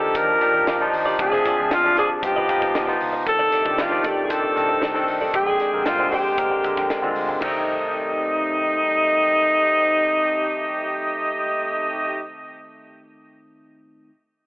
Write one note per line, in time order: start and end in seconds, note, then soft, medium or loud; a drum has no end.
0.00 1.17 D#3 medium
0.00 0.15 F3 medium
0.00 0.89 A#3 medium
0.00 1.17 A#3 medium
0.00 0.15 D4 medium
0.00 2.20 D4 medium
0.00 0.16 D#4 medium
0.00 1.17 F4 medium
0.00 0.16 G4 medium
0.00 0.89 G4 medium
0.00 1.17 G4 medium
0.00 0.18 A4 loud
0.00 0.89 D5 medium
0.00 muted clean electric guitar stroke soft
0.15 0.36 D#3 loud
0.15 0.35 F3 medium
0.15 0.35 D4 medium
0.15 0.35 D#4 medium
0.15 0.35 G4 medium
0.15 0.94 A#4 loud
0.15 muted clean electric guitar stroke soft
0.15 kick loud
0.15 closed hi-hat loud
0.29 muted clean electric guitar stroke soft
0.41 0.71 F3 medium
0.41 0.71 D4 medium
0.41 0.71 D#4 medium
0.41 0.71 G4 medium
0.41 closed hi-hat medium
0.54 0.64 D#2 loud
0.54 muted clean electric guitar stroke soft
0.67 0.88 D#2 medium
0.67 0.84 F4 medium
0.67 0.80 G4 loud
0.67 0.79 D5 loud
0.67 snare loud
0.67 closed hi-hat medium
0.80 1.10 F3 medium
0.80 1.10 D4 medium
0.80 1.10 D#4 medium
0.80 1.10 F4 loud
0.80 muted clean electric guitar stroke soft
0.93 1.14 D#2 medium
0.93 muted clean electric guitar stroke soft
0.93 open hi-hat medium
1.06 1.18 F4 medium
1.06 1.19 G4 medium
1.06 1.19 D5 medium
1.19 1.40 D2 medium
1.19 1.49 F3 medium
1.19 2.22 F3 medium
1.19 1.95 C4 medium
1.19 2.22 C4 medium
1.19 1.49 C4 medium
1.19 1.49 D4 medium
1.19 1.96 G#4 medium
1.19 1.75 G#4 loud
1.19 1.50 G#4 medium
1.19 1.95 E5 medium
1.19 muted clean electric guitar stroke soft
1.19 kick loud
1.19 closed hi-hat loud
1.32 1.44 F4 medium
1.32 1.45 C5 medium
1.32 1.46 D5 medium
1.32 snare soft
1.45 1.58 F4 medium
1.45 1.58 C5 medium
1.45 1.57 D5 medium
1.45 kick medium
1.45 closed hi-hat medium
1.58 1.69 D2 loud
1.58 1.78 F3 medium
1.58 1.78 C4 medium
1.58 1.78 D4 medium
1.58 1.78 F4 medium
1.71 1.97 E2 medium
1.71 1.98 F4 loud
1.71 muted clean electric guitar stroke soft
1.71 snare loud
1.71 closed hi-hat medium
1.84 2.14 F3 medium
1.84 2.14 C4 medium
1.84 2.14 D4 medium
1.84 2.15 G4 medium
1.84 muted clean electric guitar stroke medium
1.97 2.18 D2 medium
1.97 2.14 F4 medium
1.97 2.10 G#4 medium
1.97 2.11 C5 medium
1.97 2.10 D5 loud
1.97 closed hi-hat medium
2.11 muted clean electric guitar stroke soft
2.22 2.44 G2 loud
2.22 2.42 F3 medium
2.22 3.25 G3 medium
2.22 2.99 B3 medium
2.22 3.25 B3 medium
2.22 2.43 B3 medium
2.22 2.43 D#4 medium
2.22 3.25 F4 medium
2.22 2.99 F4 medium
2.22 2.43 G4 medium
2.22 2.99 D#5 medium
2.22 muted clean electric guitar stroke soft
2.22 kick loud
2.22 closed hi-hat loud
2.26 2.98 G4 loud
2.36 2.48 F4 medium
2.36 2.49 B4 medium
2.36 2.49 D#5 medium
2.49 2.78 F3 medium
2.49 2.79 B3 medium
2.49 2.79 D#4 medium
2.49 2.62 F4 medium
2.49 2.79 G4 medium
2.49 2.62 B4 medium
2.49 2.60 D#5 medium
2.49 kick medium
2.49 closed hi-hat medium
2.62 2.72 G1 medium
2.62 muted clean electric guitar stroke soft
2.62 kick medium
2.62 snare soft
2.74 2.96 G1 loud
2.74 muted clean electric guitar stroke soft
2.74 snare loud
2.74 closed hi-hat medium
2.87 3.17 F3 loud
2.87 3.18 B3 medium
2.87 3.18 D#4 medium
2.87 3.18 F4 loud
2.87 muted clean electric guitar stroke soft
2.87 snare soft
3.01 3.22 C#2 medium
3.01 open hi-hat medium
3.13 muted clean electric guitar stroke medium
3.25 3.48 C2 loud
3.25 5.33 C3 medium
3.25 3.56 D#3 medium
3.25 5.33 G3 medium
3.25 5.04 A3 medium
3.25 5.33 A3 medium
3.25 3.56 C4 medium
3.25 3.57 D4 medium
3.25 5.33 D4 medium
3.25 5.33 D#4 medium
3.25 5.04 G4 medium
3.25 3.57 A4 medium
3.25 3.82 A4 loud
3.25 5.04 D5 medium
3.25 muted clean electric guitar stroke soft
3.25 kick loud
3.25 closed hi-hat medium
3.39 3.50 D#4 medium
3.39 3.51 A4 medium
3.39 3.52 D5 medium
3.52 3.65 D#4 medium
3.52 3.65 A4 medium
3.52 3.64 D5 medium
3.52 closed hi-hat medium
3.65 3.80 C2 medium
3.65 3.85 D#3 medium
3.65 3.85 C4 medium
3.65 3.85 D4 medium
3.65 3.86 F4 medium
3.65 muted clean electric guitar stroke soft
3.65 kick medium
3.78 4.05 D2 medium
3.78 4.06 F4 medium
3.78 muted clean electric guitar stroke soft
3.78 snare loud
3.78 closed hi-hat medium
3.90 4.21 D#3 medium
3.90 4.21 C4 medium
3.90 4.21 D4 medium
3.90 4.21 G4 medium
3.90 muted clean electric guitar stroke soft
4.03 4.25 C2 medium
4.03 4.21 D#4 medium
4.03 4.26 G4 medium
4.03 4.17 A4 medium
4.03 4.16 D5 loud
4.03 kick medium
4.03 closed hi-hat medium
4.17 muted clean electric guitar stroke soft
4.25 4.34 G#4 medium
4.29 4.50 D#3 medium
4.29 4.50 C4 medium
4.29 4.50 D4 medium
4.29 5.09 A4 loud
4.29 4.50 C5 medium
4.29 muted clean electric guitar stroke soft
4.29 kick loud
4.29 closed hi-hat loud
4.43 muted clean electric guitar stroke medium
4.55 4.78 C3 medium
4.55 4.86 D#3 medium
4.55 4.86 C4 medium
4.55 4.86 D4 medium
4.55 4.86 A4 medium
4.55 closed hi-hat medium
4.69 muted clean electric guitar stroke soft
4.81 5.04 C2 loud
4.81 4.99 D#4 medium
4.81 4.96 A4 medium
4.81 4.94 D5 medium
4.81 snare loud
4.81 closed hi-hat medium
4.94 5.24 D#3 loud
4.94 5.25 C4 medium
4.94 5.25 D4 medium
4.94 5.25 A4 loud
4.94 muted clean electric guitar stroke soft
4.94 snare soft
5.08 5.29 B1 medium
5.08 muted clean electric guitar stroke soft
5.08 open hi-hat medium
5.21 5.35 D#4 medium
5.21 5.34 A4 medium
5.21 5.34 D5 medium
5.33 5.55 A#1 loud
5.33 5.64 D3 medium
5.33 7.13 G#3 medium
5.33 5.64 G#3 medium
5.33 7.41 G#3 medium
5.33 7.41 A#3 medium
5.33 5.64 C4 medium
5.33 7.41 D4 medium
5.33 5.64 G4 medium
5.33 5.87 G#4 loud
5.33 7.12 C5 medium
5.33 7.13 G5 medium
5.33 muted clean electric guitar stroke soft
5.33 kick loud
5.33 closed hi-hat loud
5.47 5.59 G#4 medium
5.47 5.60 D5 medium
5.47 5.60 G5 medium
5.60 5.73 G#4 medium
5.60 5.73 D5 medium
5.60 5.72 G5 medium
5.60 closed hi-hat medium
5.73 5.84 A#1 medium
5.73 5.93 D3 medium
5.73 5.93 G#3 medium
5.73 5.93 C4 medium
5.73 5.94 A#4 medium
5.73 muted clean electric guitar stroke soft
5.86 6.12 C2 medium
5.86 6.10 F4 loud
5.86 muted clean electric guitar stroke soft
5.86 snare loud
5.86 closed hi-hat medium
5.98 6.29 D3 medium
5.98 6.29 G#3 medium
5.98 6.29 C4 medium
5.98 6.30 G#4 medium
5.98 muted clean electric guitar stroke medium
6.11 6.33 A#1 medium
6.11 7.12 G4 loud
6.11 6.29 G#4 medium
6.11 6.25 D5 medium
6.11 6.24 G5 medium
6.11 open hi-hat medium
6.25 muted clean electric guitar stroke soft
6.37 6.49 A#2 loud
6.37 6.58 D3 medium
6.37 6.58 G#3 medium
6.37 6.58 C4 medium
6.37 6.58 A#4 medium
6.37 muted clean electric guitar stroke soft
6.37 kick loud
6.37 closed hi-hat loud
6.51 muted clean electric guitar stroke soft
6.63 6.75 A#1 medium
6.63 6.94 D3 medium
6.63 6.94 G#3 medium
6.63 6.94 C4 medium
6.63 6.94 G4 medium
6.63 kick medium
6.63 closed hi-hat medium
6.77 6.88 A#1 medium
6.77 muted clean electric guitar stroke soft
6.77 kick medium
6.77 snare soft
6.90 muted clean electric guitar stroke soft
6.90 snare loud
6.90 closed hi-hat medium
7.02 7.14 D#2 medium
7.02 7.33 D3 medium
7.02 7.33 G#3 medium
7.02 7.33 C4 medium
7.02 7.33 F4 loud
7.02 muted clean electric guitar stroke soft
7.15 7.26 D2 medium
7.15 open hi-hat medium
7.28 7.39 C#2 medium
7.28 muted clean electric guitar stroke soft
7.40 12.19 C2 medium
7.40 12.21 C3 medium
7.40 12.17 D#3 medium
7.40 12.20 G3 medium
7.40 12.19 A3 medium
7.40 12.21 A3 medium
7.40 12.20 C4 medium
7.40 12.21 C4 medium
7.40 12.22 D#4 medium
7.40 12.20 D#4 medium
7.40 12.21 D#4 loud
7.40 12.19 G4 medium
7.40 12.25 A4 medium
7.40 12.19 D#5 medium
7.40 kick loud
7.40 crash medium
7.45 12.22 D#4 medium
7.45 12.27 D5 medium